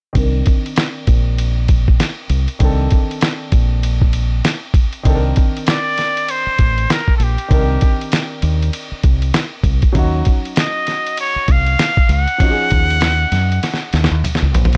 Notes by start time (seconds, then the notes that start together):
0.13 C2 D#3 C4 D4, kick, ride
0.19 A#4
0.46 kick, ride
0.66 ride
0.76 snare, hi-hat pedal, ride
1.07 A#1, kick, ride
1.38 ride
1.68 kick, ride
1.88 kick
2.00 snare, hi-hat pedal, ride
2.29 C2, ride
2.48 ride
2.59 C2 D#3 C4 D4, kick, ride
2.64 A4
2.90 kick, ride
3.11 ride
3.21 snare, hi-hat pedal, ride
3.52 A#1, kick, ride
3.83 ride
4.02 kick
4.13 ride
4.45 snare, hi-hat pedal, ride
4.74 kick, ride
4.93 ride
5.03 C2 D#3 C4 D4, kick, ride
5.09 A4
5.15 A#4
5.36 kick, ride
5.57 ride
5.67 D5, snare, hi-hat pedal, ride
5.97 snare, ride
6.17 ride
6.28 C5, ride
6.46 muted fingered electric bass stroke
6.58 A1, kick, ride
6.78 ride
6.90 A#4, snare, hi-hat pedal, ride
7.08 kick
7.17 A#1 A4, ride
7.23 G4
7.38 ride
7.48 C2 D#3 C4 D4, kick, ride
7.54 A#4
7.81 kick, ride
8.01 ride
8.12 snare, hi-hat pedal, ride
8.42 D#2, ride
8.62 ride
8.73 ride
8.92 muted fingered electric bass stroke
9.03 C2, kick, ride
9.22 ride
9.34 snare, hi-hat pedal, ride
9.63 C2, kick, ride
9.82 kick, ride
9.93 D#2 F#3 C#4 D#4, kick, ride
9.98 F#4
10.25 kick, ride
10.45 ride
10.56 D#5, snare, hi-hat pedal, ride
10.87 snare, ride
11.07 ride
11.18 C#5, ride
11.36 muted fingered electric bass stroke
11.48 C2 F5, kick, ride
11.67 ride
11.79 snare, hi-hat pedal, ride
11.97 kick
12.09 C#2 F#5, ride
12.28 ride
12.38 F3 C#4, kick, ride
12.42 D#4 F#4
12.51 G#4
12.70 D#2, kick, ride
12.90 ride
13.01 snare, hi-hat pedal, ride
13.32 F#2, snare, ride
13.52 ride
13.63 snare, ride
13.74 snare
13.93 D#2, snare, ride
14.04 snare
14.11 D#2
14.24 hi-hat pedal, mid tom, ride
14.35 snare
14.42 C#2
14.54 A#1, floor tom, ride
14.65 floor tom
14.73 ride